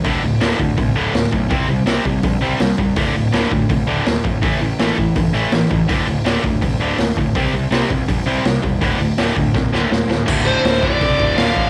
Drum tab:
CC |--------|--------|--------|--------|
HH |o-o-o-o-|o-o-o-o-|o-o-o-o-|o-o-o-o-|
SD |--o---o-|--o---o-|--o---o-|--o---o-|
BD |o--oo--o|o--oo--o|o--oo--o|o--oo--o|

CC |--------|--------|--------|x-------|
HH |o-o-o-o-|o-o-o-o-|o-o-----|--o-o-o-|
SD |--o---o-|--o---o-|--o-oooo|--o---o-|
BD |o--oo--o|o--oo--o|o--oo---|o--ooo-o|